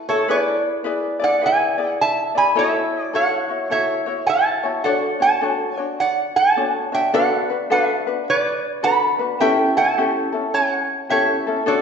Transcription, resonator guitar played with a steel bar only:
0.09 0.28 A4 medium
0.09 0.28 C#5 medium
0.31 1.19 B4 medium
0.31 1.23 D5 medium
1.24 1.42 D5 medium
1.24 1.44 F#5 medium
1.46 1.98 E5 medium
1.46 1.91 G#5 medium
1.91 2.01 F#5 medium
2.01 2.35 E5 medium
2.01 2.34 A5 loud
2.38 2.56 G#5 medium
2.38 2.58 B5 medium
2.59 3.11 C#5 medium
2.59 3.04 E5 medium
3.04 3.14 D5 medium
3.15 3.67 C#5 medium
3.15 3.73 F#5 medium
3.71 4.24 C#5 medium
3.71 4.25 E5 medium
4.26 4.81 E5 medium
4.26 4.71 F#5 medium
4.26 4.29 G#5 medium
4.26 4.72 A5 medium
4.84 5.19 D5 medium
4.84 5.22 F#5 medium
5.22 5.96 F#5 medium
5.22 5.79 A5 medium
5.79 6.01 G5 medium
6.00 6.34 D5 medium
6.00 6.35 F#5 medium
6.36 6.88 F#5 medium
6.36 6.94 A5 medium
6.94 7.12 E5 medium
6.94 7.12 G5 medium
7.14 7.66 D5 medium
7.14 7.72 F#5 medium
7.72 8.24 B4 medium
7.72 8.29 E5 medium
8.30 8.81 B4 medium
8.30 8.86 D5 medium
8.84 9.36 F#5 medium
8.84 9.36 B5 loud
9.40 9.74 E5 medium
9.40 9.77 G5 medium
9.77 10.50 F#5 medium
9.77 10.56 A5 loud
10.54 11.06 C#5 medium
10.54 11.10 F#5 medium
11.10 11.63 C#5 medium
11.10 11.63 E5 medium
11.68 11.82 A4 medium
11.68 11.82 D5 medium

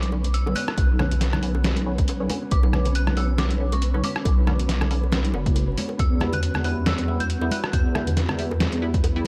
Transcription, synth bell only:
0.00 0.36 D6 loud
0.34 0.57 E6 loud
0.56 2.26 F#6 loud
2.52 2.96 D6 loud
2.95 3.18 F#6 loud
3.17 3.39 E6 loud
3.39 3.74 D6 loud
3.73 4.05 C#6 medium
4.04 5.30 D6 medium
6.00 6.34 E6 medium
6.34 6.64 F#6 loud
6.65 6.85 F#6 loud
6.87 7.21 E6 loud
7.20 7.53 G6 loud
7.52 7.72 F#6 loud
7.73 8.14 G6 loud

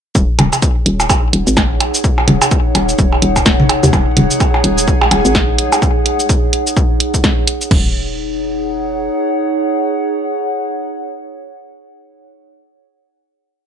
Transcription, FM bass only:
0.15 0.26 D#1 loud
0.39 0.49 D#1 loud
0.86 1.11 D#1 loud
1.10 1.29 G#1 medium
1.33 1.44 D#1 loud
1.47 1.82 G#1 medium
1.80 1.91 A#1 medium
2.28 2.38 D#1 loud
2.75 2.94 D#1 loud
2.99 3.17 D#1 loud
3.22 3.78 D#1 loud
3.83 3.91 D#2 medium
3.93 4.04 D#1 loud
4.17 4.27 D#1 loud
4.64 4.89 D#1 loud
4.88 5.06 G#1 medium
5.11 5.22 D#1 medium
5.25 5.60 G#1 medium
5.58 5.69 A#1 medium
7.71 9.09 D#1 loud

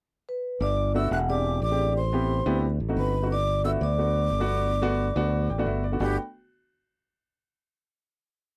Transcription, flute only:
0.62 0.93 D6 medium
0.95 1.11 E6 medium
1.13 1.19 F#6 medium
1.30 1.61 D6 medium
1.63 1.94 D6 medium
1.97 2.60 C6 medium
2.98 3.29 B5 medium
3.31 3.63 D6 medium
3.65 3.71 E6 medium
3.81 5.63 D6 medium
6.00 6.16 G4 medium

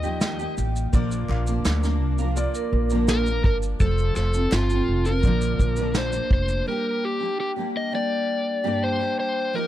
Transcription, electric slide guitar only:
0.00 0.54 D#5 medium
3.10 3.44 A#4 loud
3.46 3.55 A#4 medium
3.81 4.15 A4 medium
4.17 4.53 A4 loud
4.53 5.08 F4 medium
5.06 6.27 A#4 medium
5.98 6.32 C5 loud
6.33 6.68 C5 medium
6.68 7.04 A#4 medium
7.05 7.39 G4 loud
7.40 7.50 G4 loud
7.77 7.92 D#5 medium
7.95 8.86 D5 loud
8.84 9.16 C5 loud
9.20 9.56 C5 medium
9.55 9.67 A#4 loud

